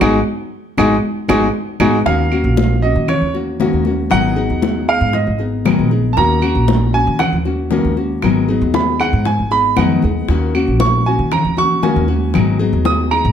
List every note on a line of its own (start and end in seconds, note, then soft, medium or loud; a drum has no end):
0.01 0.20 G#1 loud
0.01 0.18 G#3 medium
0.01 0.18 B3 loud
0.01 0.18 D#4 loud
0.01 0.18 D#4 medium
0.01 0.18 F#4 loud
0.01 0.18 G#4 loud
0.01 low bongo medium
0.01 high conga loud
0.01 claves loud
0.77 0.97 G#1 medium
0.77 0.95 G#3 loud
0.77 0.95 B3 loud
0.77 0.94 D#4 loud
0.77 0.95 D#4 loud
0.77 0.94 F#4 medium
0.77 0.94 G#4 loud
0.77 low bongo medium
0.77 high conga loud
0.77 claves loud
1.28 1.48 G#1 medium
1.28 1.46 G#3 medium
1.28 1.46 B3 medium
1.28 1.45 D#4 loud
1.28 1.47 D#4 loud
1.28 1.45 F#4 medium
1.28 1.45 G#4 loud
1.28 low bongo loud
1.28 high conga medium
1.28 claves loud
1.80 1.99 G#1 medium
1.80 1.97 G#3 medium
1.80 1.97 B3 medium
1.80 1.97 D#4 loud
1.80 1.97 D#4 medium
1.80 1.97 F#4 medium
1.80 1.97 G#4 loud
1.80 low bongo medium
1.80 high conga loud
1.80 claves loud
2.06 2.43 D#2 loud
2.06 2.31 D#3 medium
2.06 2.32 A#3 medium
2.06 2.32 C#4 medium
2.06 2.31 F#4 medium
2.06 2.79 F5 medium
2.06 high bongo medium
2.32 2.83 A#3 medium
2.32 2.83 C#4 medium
2.32 2.82 F#4 medium
2.32 high conga soft
2.32 claves medium
2.44 2.93 A#1 loud
2.57 high bongo medium
2.57 high conga loud
2.82 3.08 A#3 soft
2.82 3.08 C#4 soft
2.82 3.08 F#4 medium
2.82 3.08 D#5 medium
2.82 high bongo soft
2.82 high conga soft
2.96 3.20 D#3 loud
3.08 3.34 C#5 medium
3.08 muted nylon-string guitar stroke medium
3.08 high bongo medium
3.08 high conga soft
3.08 low conga medium
3.08 claves medium
3.21 3.70 D#2 medium
3.34 3.59 A#3 soft
3.34 3.60 C#4 soft
3.34 3.59 F#4 medium
3.34 high bongo soft
3.34 high conga soft
3.60 3.85 D#3 medium
3.60 3.85 A#3 medium
3.60 3.85 C#4 medium
3.60 3.85 F#4 medium
3.60 high bongo soft
3.60 low bongo medium
3.60 high conga medium
3.73 4.10 D#2 medium
3.85 4.11 A#3 soft
3.85 4.11 C#4 soft
3.85 4.11 F#4 medium
3.85 high bongo soft
3.85 high conga medium
4.10 4.48 G#1 medium
4.10 4.35 D#3 medium
4.10 4.36 F#3 medium
4.10 4.36 B3 medium
4.10 4.36 D#4 medium
4.10 4.35 G#4 medium
4.10 4.85 F#5 loud
4.10 high bongo medium
4.10 high conga soft
4.10 claves medium
4.36 4.88 F#3 medium
4.36 4.88 B3 medium
4.36 4.87 D#4 medium
4.36 4.87 G#4 medium
4.36 high conga soft
4.50 4.99 D#2 medium
4.62 high bongo medium
4.62 high conga loud
4.88 5.13 B3 soft
4.88 5.13 D#4 medium
4.88 5.13 G#4 medium
4.88 5.14 F5 medium
4.88 high bongo soft
4.88 high conga soft
4.88 claves medium
5.01 5.26 G#2 loud
5.13 5.39 D#5 medium
5.13 muted nylon-string guitar stroke medium
5.13 high bongo medium
5.13 high conga soft
5.27 5.76 G#1 medium
5.39 5.65 B3 soft
5.39 5.65 D#4 soft
5.39 5.64 G#4 medium
5.39 high bongo soft
5.39 high conga soft
5.65 5.90 D#3 medium
5.65 5.90 F#3 medium
5.65 5.91 B3 medium
5.65 5.91 D#4 medium
5.65 5.90 G#4 medium
5.65 high bongo soft
5.65 low bongo medium
5.65 high conga medium
5.65 claves medium
5.79 6.15 A#1 medium
5.91 6.17 B3 soft
5.91 6.16 D#4 soft
5.91 6.16 G#4 soft
5.91 high bongo soft
5.91 high conga soft
6.13 6.42 D#3 medium
6.13 6.16 A5 medium
6.17 6.54 D#2 medium
6.17 6.42 A#3 medium
6.17 6.42 C#4 medium
6.17 6.40 F#4 medium
6.17 6.90 A#5 loud
6.17 high bongo medium
6.42 6.94 A#3 medium
6.42 6.93 C#4 medium
6.42 6.92 F#4 medium
6.42 high conga soft
6.42 claves medium
6.55 7.04 A#1 medium
6.68 high bongo medium
6.68 high conga loud
6.93 7.19 A#3 soft
6.93 7.19 C#4 medium
6.93 7.18 F#4 medium
6.93 7.19 G#5 loud
6.93 high bongo soft
6.93 high conga soft
7.07 7.31 D#3 loud
7.19 7.35 F#5 medium
7.19 muted nylon-string guitar stroke medium
7.19 high bongo medium
7.19 high conga soft
7.19 low conga medium
7.19 claves medium
7.33 7.82 D#2 medium
7.45 7.70 A#3 soft
7.45 7.71 C#4 medium
7.45 7.70 F#4 medium
7.45 high bongo soft
7.45 high conga soft
7.71 7.96 D#3 medium
7.71 7.96 A#3 medium
7.71 7.96 C#4 medium
7.71 7.95 F#4 medium
7.71 high bongo soft
7.71 low bongo medium
7.71 high conga medium
7.85 8.21 D#2 medium
7.97 8.22 A#3 soft
7.97 8.22 C#4 soft
7.97 8.22 F#4 soft
7.97 high bongo soft
8.22 8.60 G#1 medium
8.22 8.48 D#3 medium
8.22 8.48 F#3 medium
8.22 8.48 B3 medium
8.22 8.48 D#4 medium
8.22 8.47 G#4 medium
8.22 high bongo medium
8.22 high conga soft
8.22 claves medium
8.48 9.00 F#3 medium
8.48 9.00 B3 medium
8.48 9.00 D#4 medium
8.48 8.99 G#4 medium
8.48 high conga soft
8.62 9.10 D#2 loud
8.74 8.99 B5 medium
8.74 high bongo medium
8.74 high conga loud
9.00 9.25 B3 soft
9.00 9.25 D#4 medium
9.00 9.25 G#4 medium
9.00 9.25 F#5 medium
9.00 high bongo soft
9.00 high conga soft
9.00 claves medium
9.13 9.37 G#2 loud
9.25 9.51 G#5 medium
9.25 muted nylon-string guitar stroke medium
9.25 high bongo medium
9.25 high conga soft
9.39 9.75 G#1 medium
9.51 9.77 B3 soft
9.51 9.77 D#4 soft
9.51 9.76 G#4 medium
9.51 9.76 B5 loud
9.51 high bongo soft
9.51 high conga soft
9.76 10.00 F2 medium
9.76 10.02 D#3 medium
9.76 10.02 F#3 medium
9.76 10.02 B3 medium
9.76 10.03 D#4 medium
9.76 10.02 G#4 medium
9.76 10.50 F#5 medium
9.76 high bongo soft
9.76 low bongo medium
9.76 high conga medium
9.76 claves medium
10.02 10.26 D#2 medium
10.02 10.29 B3 soft
10.02 10.28 D#4 soft
10.02 10.28 G#4 medium
10.02 high bongo soft
10.02 high conga medium
10.28 10.65 D#2 medium
10.28 10.54 D#3 medium
10.28 10.54 A#3 medium
10.28 10.54 C#4 medium
10.28 10.54 F#4 medium
10.28 high bongo medium
10.28 high conga soft
10.55 11.06 A#3 medium
10.55 11.05 C#4 medium
10.55 11.05 F#4 medium
10.55 high conga soft
10.55 claves medium
10.68 11.16 A#1 medium
10.80 11.05 C#6 loud
10.80 high bongo medium
10.80 high conga loud
11.06 11.31 A#3 soft
11.06 11.31 C#4 soft
11.06 11.31 F#4 medium
11.06 11.31 G#5 medium
11.06 high bongo soft
11.06 high conga soft
11.19 11.43 D#3 medium
11.31 11.57 A#5 medium
11.31 muted nylon-string guitar stroke medium
11.31 high bongo medium
11.31 high conga soft
11.31 low conga medium
11.31 claves medium
11.45 11.93 D#2 medium
11.57 11.82 A#3 soft
11.57 11.83 C#4 soft
11.57 11.82 F#4 medium
11.57 11.83 C#6 loud
11.57 high bongo soft
11.57 high conga soft
11.57 low conga medium
11.82 12.07 D#3 medium
11.82 12.08 A#3 medium
11.82 12.08 C#4 medium
11.82 12.07 F#4 medium
11.82 12.56 G#5 medium
11.82 high bongo soft
11.82 low bongo medium
11.82 high conga medium
11.96 12.33 D#2 loud
12.08 12.34 A#3 soft
12.08 12.34 C#4 soft
12.08 12.33 F#4 soft
12.08 high bongo soft
12.08 high conga medium
12.34 12.72 G#1 loud
12.34 12.59 D#3 medium
12.34 12.59 F#3 medium
12.34 12.59 B3 medium
12.34 12.59 D#4 medium
12.34 12.58 G#4 medium
12.34 high bongo medium
12.34 high conga soft
12.34 claves medium
12.59 13.11 F#3 medium
12.59 13.11 B3 medium
12.59 13.11 D#4 medium
12.59 13.10 G#4 medium
12.59 high conga soft
12.73 13.22 D#2 loud
12.85 13.11 D#6 loud
12.85 high bongo medium
12.85 high conga loud
13.11 13.32 B3 soft
13.11 13.32 D#4 soft
13.11 13.32 G#4 medium
13.11 13.32 A#5 medium
13.11 high bongo soft
13.11 high conga soft
13.11 claves medium
13.25 13.32 G#2 loud